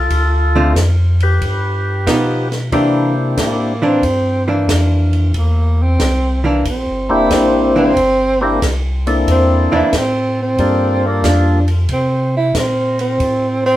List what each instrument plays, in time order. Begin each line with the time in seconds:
Already playing: tonewheel organ F4 A4
0.10 tonewheel organ D2, kick, ride
0.56 hollow-body jazz guitar D3 A3 C4 F4
0.76 tonewheel organ F2, kick, snare, hi-hat pedal, ride
1.20 tonewheel organ G4 B4, ride
1.41 tonewheel organ G2, kick, ride
2.07 tonewheel organ B2, hollow-body jazz guitar F3 B3 D#4, kick, snare, hi-hat pedal, ride
2.52 snare, ride
2.72 tonewheel organ C3 A#3 C4 D4 E4 G4, hollow-body jazz guitar E3 A#3 D4, kick, ride
3.37 tonewheel organ A2, kick, snare, hi-hat pedal, ride
3.41 tenor saxophone A#3
3.82 hollow-body jazz guitar E3 A#3 D4, tenor saxophone C4
4.03 tonewheel organ G2, kick, ride
4.48 hollow-body jazz guitar E3 A#3 D4
4.69 tonewheel organ F2, kick, snare, hi-hat pedal, ride
5.13 ride
5.34 tonewheel organ E2, kick, ride
5.39 tenor saxophone A#3
5.82 tenor saxophone C4
6.00 tonewheel organ C2, kick, snare, hi-hat pedal, ride
6.44 hollow-body jazz guitar E3 A#3 D4
6.65 tonewheel organ A#1, kick, ride
6.70 tenor saxophone C4
6.88 tonewheel organ G1
7.09 tonewheel organ E1 A#3 C4 D4 E4 G4, tenor saxophone E4
7.30 tonewheel organ A1, tenor saxophone C4, kick, snare, hi-hat pedal, ride
7.76 hollow-body jazz guitar E3 A#3 D4, tenor saxophone C4
7.97 tonewheel organ G1, kick, ride
8.41 tonewheel organ A#3 C4 D4 E4 G4, tenor saxophone A#3
8.62 tonewheel organ C2, kick, snare, hi-hat pedal, ride
9.06 tonewheel organ A#3 C4 D4 E4 A4, ride
9.27 tonewheel organ E2, tenor saxophone C4, kick, ride
9.72 tonewheel organ E2, hollow-body jazz guitar E3 A#3 D4, tenor saxophone E4
9.93 tonewheel organ A2, kick, snare, hi-hat pedal, ride
9.98 tenor saxophone C4
10.42 tenor saxophone C4
10.58 tonewheel organ G2 G3 A#3 D4 F4 A4, kick, ride
11.07 tenor saxophone A#3
11.24 tonewheel organ F2, hollow-body jazz guitar F3 A#3 D4, kick, snare, hi-hat pedal, ride
11.68 ride
11.89 tonewheel organ C3, kick, ride
11.93 tenor saxophone C4
12.37 tenor saxophone E4
12.55 tonewheel organ A#2, tenor saxophone C4, kick, snare, hi-hat pedal, ride
12.99 tenor saxophone C4, ride
13.20 tonewheel organ A2, kick, ride
13.66 tenor saxophone C4